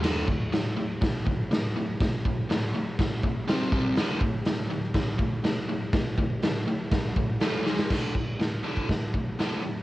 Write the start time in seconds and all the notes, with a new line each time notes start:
0.02 D2 A2 D3, snare, crash
0.27 D2 A2, kick
0.52 D2 A2, snare, open hi-hat
0.76 D2 A2
1.01 D2 A2, kick, snare, open hi-hat
1.26 D2 A2, kick
1.51 D2 A2, snare, open hi-hat
1.76 D2 A2
2.00 D2 A2, kick, snare, open hi-hat
2.25 D2 A2, kick
2.50 D2 A2, snare, open hi-hat
2.74 D2 A2
2.99 D2 A2, kick, snare, open hi-hat
3.23 D2 A2, kick
3.48 C3 G3 C4, snare, open hi-hat
3.72 C3 G3 C4, kick
3.96 D2 A2 D3, snare, open hi-hat
4.21 D2 A2, kick
4.45 D2 A2, snare, open hi-hat
4.70 D2 A2
4.94 D2 A2, kick, snare, open hi-hat
5.19 D2 A2, kick
5.44 D2 A2, snare, open hi-hat
5.69 D2 A2
5.93 D2 A2, kick, snare, open hi-hat
6.18 D2 A2, kick
6.42 D2 A2, snare, open hi-hat
6.68 D2 A2
6.91 D2 A2, kick, snare, open hi-hat
7.16 D2 A2, kick
7.40 A2 E3 A3, snare, open hi-hat
7.66 G#2 D#3 G#3, snare
7.79 snare
7.90 D2 A2 D3, kick, snare, crash
8.15 D2 A2, kick
8.39 D2 A2, snare, open hi-hat
8.63 D2 A2 D3
8.77 kick
8.88 D2 A2, kick, snare, open hi-hat
9.14 D2 A2, kick
9.39 D2 A2 D3, snare, open hi-hat
9.63 D2 A2